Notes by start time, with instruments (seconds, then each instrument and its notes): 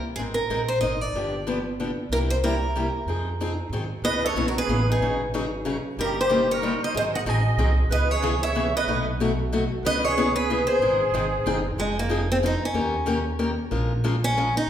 0.16 upright bass G#1, steel-string acoustic guitar G#3 C4 D#4 G#4 A#4
0.34 steel-string acoustic guitar A#4
0.49 upright bass A#1, steel-string acoustic guitar G#3 C4 D#4 A#4
0.68 steel-string acoustic guitar C5
0.81 upright bass G#1, steel-string acoustic guitar G#3 C4 D#4 A#4 D#5
1.01 steel-string acoustic guitar D5
1.13 upright bass G1, steel-string acoustic guitar D3 F3 B3 D4 G4
1.47 steel-string acoustic guitar D3 F3 B3 D4 G4
1.80 steel-string acoustic guitar D3 F3 B3 D4 G4
2.09 upright bass C2, steel-string acoustic guitar C3 G3 A#3 E4 G4 A#4
2.30 steel-string acoustic guitar C5
2.43 steel-string acoustic guitar C3 G3 A#3 E4 G4 A#4
2.75 steel-string acoustic guitar C3 G3 A#3 E4 G4
3.06 upright bass F2, steel-string acoustic guitar F3 C4 D#4 G#4
3.40 steel-string acoustic guitar F3 C4 D#4 G#4
3.69 upright bass G#2, steel-string acoustic guitar D#3 F#3 C4 G#4
3.74 steel-string acoustic guitar D#4
4.02 upright bass C#2, steel-string acoustic guitar C#3 E3 B3 C#4 G#4 D#5, accordion B4
4.23 accordion A4, steel-string acoustic guitar C#5
4.35 upright bass B1, steel-string acoustic guitar C#3 E3 B3 C#4 G#4
4.48 accordion F#4, steel-string acoustic guitar A#4
4.57 accordion G#4, steel-string acoustic guitar B4
4.67 upright bass A1, steel-string acoustic guitar C#3 E3 B3 C#4 G#4
4.87 accordion D#4
4.92 steel-string acoustic guitar G#4
5.00 upright bass G#1, steel-string acoustic guitar C#3 F#3 C#4 D#4 G#4
5.34 steel-string acoustic guitar C#3 F#3 C#4 D#4 G#4
5.65 steel-string acoustic guitar C#3 F#3 C#4 D#4 G#4
5.97 upright bass G1, steel-string acoustic guitar C#3 G3 A#3 D#4 G4 A#4, accordion G4
6.20 accordion G4, steel-string acoustic guitar C5
6.30 steel-string acoustic guitar C#3 G3 A#3 D#4 G4
6.51 accordion A#4, steel-string acoustic guitar C#5
6.62 steel-string acoustic guitar C#3 G3 A#3 D#4 G4
6.83 accordion C5, steel-string acoustic guitar D#5
6.94 upright bass G#1, steel-string acoustic guitar D#3 F#3 C4 D#4 G#4 D#5, accordion C5
7.13 accordion D#5, steel-string acoustic guitar F#5
7.25 upright bass A1, steel-string acoustic guitar D#3 F#3 C4 D#4 G#4 G#5, accordion D#5
7.57 upright bass C2, steel-string acoustic guitar D#3 F#3 C4 D#4 G#4
7.89 upright bass C#2, steel-string acoustic guitar C#3 E3 B3 C#4 G#4 D#5, accordion B4
8.11 accordion G#4, steel-string acoustic guitar C#5
8.22 steel-string acoustic guitar C#3 E3 B3 C#4 G#4
8.43 accordion C#5, steel-string acoustic guitar E5
8.55 steel-string acoustic guitar C#3 E3 B3 C#4 G#4
8.76 accordion B4, steel-string acoustic guitar D#5
8.87 upright bass B1, steel-string acoustic guitar B2 F#3 A3 D#4 F#4
9.20 steel-string acoustic guitar B2 F#3 A3 D#4 F#4
9.52 steel-string acoustic guitar B2 F#3 A3 D#4 F#4
9.83 upright bass C#2, steel-string acoustic guitar C#3 E3 B3 C#4 G#4 D#5, accordion B4
10.04 accordion G#4, steel-string acoustic guitar C#5
10.17 steel-string acoustic guitar C#3 E3 B3 C#4 G#4
10.36 accordion G#4, steel-string acoustic guitar B4
10.50 steel-string acoustic guitar C#3 E3 B3 C#4 G#4
10.66 accordion G#4, steel-string acoustic guitar C5
10.79 upright bass G#1, steel-string acoustic guitar D#3 G#3 C4 D#4 G#4
11.11 upright bass G#1, steel-string acoustic guitar D#3 G#3 C4 D#4 G#4
11.44 upright bass F#1, steel-string acoustic guitar D#3 G#3 C4 D#4 G#4
11.76 upright bass F1, steel-string acoustic guitar F3 G#3 C4 D#4 G#4
11.99 steel-string acoustic guitar A#3
12.09 steel-string acoustic guitar F3 C4 D#4 G#4
12.32 steel-string acoustic guitar C4
12.43 steel-string acoustic guitar F3 C4 D#4 G#4
12.65 steel-string acoustic guitar C#4
12.74 upright bass D#2, steel-string acoustic guitar D#3 A#3 C#4 G4 A#4
13.06 steel-string acoustic guitar D#3 A#3 C#4 G4 A#4
13.39 steel-string acoustic guitar D#3 A#3 C#4 G4 A#4
13.71 upright bass A#1, steel-string acoustic guitar F3 G#3 C#4 F4 A#4
14.04 steel-string acoustic guitar F3 G#3 C#4 F4 A#4
14.24 steel-string acoustic guitar C#4
14.37 steel-string acoustic guitar F3 G#3 C#4 F4 A#4
14.57 steel-string acoustic guitar D#4
14.67 upright bass C2